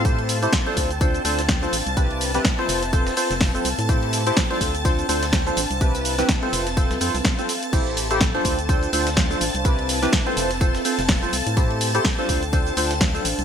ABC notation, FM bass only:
X:1
M:4/4
L:1/16
Q:"Swing 16ths" 1/4=125
K:Ddor
V:1 name="FM bass" clef=bass
A,,3 z3 D,,3 z D,,3 z A,,, C,,- | C,,3 z3 F,,,3 z2 F,,,2 z C,, A,,- | A,,3 z3 D,,3 z D,,3 z A,,, C,,- | C,,3 z3 F,,,3 C,, F,, C,, z4 |
A,,,4- A,,, z D,,3 z D,,3 z A,,, C,,- | C,,3 z3 F,,,3 z2 F,,,2 z C,, A,,- | A,,3 z3 D,,3 z D,,3 z A,,, C,, |]